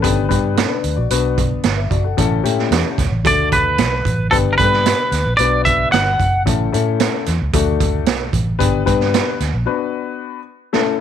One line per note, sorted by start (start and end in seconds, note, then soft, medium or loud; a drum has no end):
0.00 0.25 B3 medium
0.00 0.16 C#4 medium
0.00 0.24 D4 medium
0.00 0.25 G4 medium
0.00 0.15 A4 medium
0.00 0.24 B4 medium
0.00 kick medium
0.04 0.26 G1 loud
0.04 closed hi-hat medium
0.29 0.64 G2 medium
0.29 0.84 B3 medium
0.29 0.56 D4 medium
0.29 0.57 G4 medium
0.29 0.56 B4 medium
0.29 kick medium
0.29 closed hi-hat medium
0.56 0.69 C#4 medium
0.56 0.69 A4 medium
0.56 snare medium
0.56 closed hi-hat medium
0.69 0.95 D4 medium
0.69 0.95 B4 medium
0.84 0.95 D2 medium
0.84 closed hi-hat medium
0.96 1.08 A#1 medium
0.96 1.10 F#4 medium
0.96 1.22 D5 medium
1.10 1.55 B1 medium
1.10 1.83 B3 medium
1.10 1.83 D4 medium
1.10 1.38 F#4 medium
1.10 1.38 B4 medium
1.10 closed hi-hat medium
1.38 kick medium
1.38 closed hi-hat medium
1.63 1.87 G1 medium
1.63 snare loud
1.63 closed hi-hat medium
1.76 1.90 E5 medium
1.90 2.13 F#1 medium
1.90 2.04 F#4 medium
1.90 2.03 D5 medium
1.90 kick medium
1.90 closed hi-hat medium
2.04 2.16 A4 medium
2.04 2.30 F#5 medium
2.17 2.40 A1 medium
2.17 2.39 A3 medium
2.17 2.39 C#4 medium
2.17 2.39 E4 medium
2.17 2.39 A4 loud
2.17 kick medium
2.17 closed hi-hat medium
2.43 2.67 A2 medium
2.43 2.99 A3 medium
2.43 2.99 C#4 medium
2.43 2.99 E4 medium
2.43 2.98 G4 medium
2.43 closed hi-hat medium
2.59 snare soft
2.71 2.82 E2 medium
2.71 3.21 C#5 medium
2.71 snare loud
2.71 closed hi-hat medium
2.98 3.09 C#2 medium
2.98 kick medium
2.98 snare soft
2.98 closed hi-hat medium
3.11 3.22 A1 medium
3.24 3.80 D2 medium
3.24 3.97 A3 medium
3.24 3.97 D4 medium
3.24 3.97 F#4 medium
3.24 3.97 A4 medium
3.24 3.51 D5 medium
3.24 kick loud
3.24 closed hi-hat medium
3.52 4.31 B4 medium
3.52 kick medium
3.52 closed hi-hat medium
3.78 4.01 B1 medium
3.78 snare loud
3.78 closed hi-hat medium
4.05 4.28 A1 medium
4.05 kick medium
4.05 closed hi-hat medium
4.31 4.55 G1 medium
4.31 4.53 B3 medium
4.31 4.53 D4 medium
4.31 4.53 G4 medium
4.31 4.36 A4 medium
4.31 4.53 B4 medium
4.31 kick medium
4.31 closed hi-hat medium
4.53 4.57 A#4 medium
4.58 4.93 G2 medium
4.58 5.13 B3 medium
4.58 5.13 D4 medium
4.58 5.13 G4 medium
4.58 4.65 A4 medium
4.58 5.35 B4 medium
4.58 kick medium
4.58 closed hi-hat medium
4.65 5.16 B4 medium
4.73 snare soft
4.86 snare medium
4.86 closed hi-hat medium
5.12 5.23 D2 medium
5.12 snare soft
5.12 closed hi-hat medium
5.26 5.37 A#1 medium
5.37 5.83 B1 medium
5.37 6.12 B3 medium
5.37 6.12 D4 medium
5.37 6.12 F#4 medium
5.37 6.12 B4 medium
5.37 5.63 D5 medium
5.37 closed hi-hat medium
5.65 5.92 E5 medium
5.65 kick medium
5.65 closed hi-hat medium
5.92 6.15 G1 medium
5.92 6.42 F#5 medium
5.92 snare loud
5.92 closed hi-hat medium
6.20 6.47 F#1 medium
6.20 kick medium
6.20 closed hi-hat soft
6.45 6.69 A1 medium
6.45 6.67 A3 medium
6.45 6.67 C#4 medium
6.45 6.67 E4 medium
6.45 6.67 A4 medium
6.45 kick medium
6.45 closed hi-hat medium
6.72 7.07 A2 medium
6.72 7.27 A3 medium
6.72 7.27 C#4 medium
6.72 7.27 E4 medium
6.72 7.27 A4 medium
6.72 closed hi-hat medium
7.00 snare medium
7.00 closed hi-hat medium
7.26 7.38 E2 medium
7.26 snare soft
7.26 closed hi-hat medium
7.42 7.52 C#2 medium
7.53 8.08 D2 loud
7.53 8.26 A3 medium
7.53 8.26 D4 medium
7.53 8.26 F#4 medium
7.53 8.26 A4 medium
7.53 kick loud
7.53 closed hi-hat loud
7.80 kick medium
7.80 closed hi-hat medium
8.06 8.29 B1 medium
8.06 snare loud
8.06 closed hi-hat medium
8.33 8.55 A1 medium
8.33 kick medium
8.33 closed hi-hat medium
8.59 8.82 G1 medium
8.59 8.81 B3 medium
8.59 8.81 D4 medium
8.59 8.81 G4 medium
8.59 8.81 B4 loud
8.59 kick medium
8.59 closed hi-hat medium
8.86 9.20 G2 medium
8.86 9.40 B3 medium
8.86 9.40 D4 medium
8.86 9.40 G4 medium
8.86 9.40 B4 medium
8.86 kick medium
8.86 closed hi-hat medium
9.00 snare soft
9.14 snare loud
9.14 closed hi-hat medium
9.40 9.51 D2 medium
9.40 snare soft
9.40 closed hi-hat medium
9.54 9.65 A#1 medium
9.66 10.39 B3 medium
9.66 10.38 D4 medium
9.66 10.38 F#4 medium
9.66 10.39 B4 medium
10.73 10.94 A3 medium
10.73 10.95 C#4 medium
10.73 10.94 E4 medium
10.73 10.94 A4 medium
10.73 snare medium